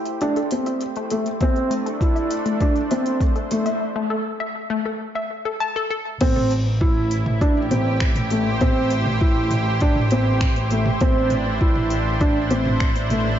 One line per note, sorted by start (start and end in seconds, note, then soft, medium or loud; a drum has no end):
0.00 1.41 A3 medium
0.00 3.81 E4 medium
0.00 2.31 G4 medium
0.00 3.82 C5 medium
0.06 closed hi-hat soft
0.21 0.35 A3 medium
0.21 0.36 D4 medium
0.21 closed hi-hat soft
0.36 0.42 A4 medium
0.36 closed hi-hat soft
0.51 0.82 C4 medium
0.51 closed hi-hat medium
0.66 0.75 E5 medium
0.66 closed hi-hat soft
0.81 closed hi-hat soft
0.96 1.10 A3 loud
0.96 closed hi-hat soft
1.10 1.26 A3 medium
1.10 1.16 A4 medium
1.10 closed hi-hat medium
1.26 closed hi-hat soft
1.41 3.81 A3 medium
1.41 1.72 C4 loud
1.41 1.50 E5 medium
1.41 kick loud
1.41 closed hi-hat soft
1.56 closed hi-hat soft
1.66 3.81 D4 medium
1.71 1.84 A3 medium
1.71 closed hi-hat medium
1.86 1.91 A4 medium
1.86 closed hi-hat soft
2.01 2.32 E4 medium
2.01 kick loud
2.01 closed hi-hat soft
2.16 2.25 E5 medium
2.16 closed hi-hat soft
2.31 closed hi-hat medium
2.46 2.59 A3 medium
2.46 closed hi-hat soft
2.61 2.76 D4 medium
2.61 2.66 A4 medium
2.61 kick loud
2.61 closed hi-hat soft
2.76 closed hi-hat soft
2.91 3.21 C4 medium
2.91 3.00 E5 medium
2.91 closed hi-hat medium
3.06 closed hi-hat soft
3.21 3.34 A3 medium
3.21 kick loud
3.21 closed hi-hat soft
3.36 3.41 A4 medium
3.36 closed hi-hat soft
3.51 3.66 A3 medium
3.51 closed hi-hat medium
3.66 3.75 E5 medium
3.66 closed hi-hat soft
3.96 4.09 A3 loud
4.10 4.16 A4 medium
4.40 4.49 E5 medium
4.70 4.84 A3 loud
4.86 4.91 A4 medium
5.15 5.25 E5 medium
5.45 5.59 A4 medium
5.60 5.74 A5 loud
5.76 5.85 A4 loud
5.91 6.00 A4 loud
6.21 10.98 A1 medium
6.21 6.51 C4 loud
6.21 kick loud
6.21 closed hi-hat soft
6.21 crash loud
6.36 mid tom medium
6.51 closed hi-hat medium
6.74 13.39 E4 medium
6.81 7.11 E4 medium
6.81 kick loud
6.81 mid tom medium
7.11 closed hi-hat medium
7.26 mid tom medium
7.41 7.56 D4 loud
7.41 kick loud
7.41 closed hi-hat soft
7.49 12.53 G4 medium
7.71 8.01 C4 medium
7.71 closed hi-hat medium
7.71 mid tom medium
8.00 finger snap medium
8.00 kick loud
8.00 closed hi-hat soft
8.16 closed hi-hat soft
8.16 mid tom medium
8.31 8.46 A3 medium
8.31 closed hi-hat medium
8.38 13.39 C5 medium
8.61 8.91 C4 loud
8.61 kick loud
8.61 closed hi-hat soft
8.61 mid tom medium
8.90 closed hi-hat medium
9.06 mid tom medium
9.21 9.51 E4 medium
9.21 kick loud
9.51 closed hi-hat medium
9.51 mid tom medium
9.80 9.96 D4 medium
9.80 kick loud
9.80 closed hi-hat soft
9.96 mid tom medium
10.11 10.42 C4 medium
10.11 closed hi-hat medium
10.41 finger snap medium
10.41 kick loud
10.41 closed hi-hat soft
10.41 mid tom medium
10.56 closed hi-hat soft
10.71 10.86 A3 medium
10.71 closed hi-hat medium
10.86 mid tom medium
11.00 13.39 A1 medium
11.00 11.31 C4 loud
11.00 13.39 D4 medium
11.00 kick loud
11.00 closed hi-hat soft
11.30 closed hi-hat medium
11.30 mid tom medium
11.61 11.91 E4 medium
11.61 kick loud
11.75 mid tom medium
11.90 closed hi-hat medium
12.21 12.36 D4 medium
12.21 kick loud
12.21 closed hi-hat soft
12.21 mid tom medium
12.51 12.81 C4 medium
12.51 closed hi-hat medium
12.65 mid tom medium
12.80 finger snap medium
12.80 kick loud
12.80 closed hi-hat soft
12.96 closed hi-hat soft
13.10 13.26 A3 medium
13.10 closed hi-hat medium
13.10 mid tom medium